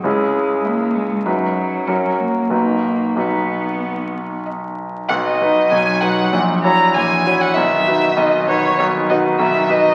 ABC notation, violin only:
X:1
M:4/4
L:1/16
Q:1/4=97
K:B
V:1 name="Violin"
z4 E4 B4 A4 | z4 d4 z4 d4 | f d3 g2 f2 f2 a2 g3 f | e4 d2 c2 c2 d2 e2 d2 |]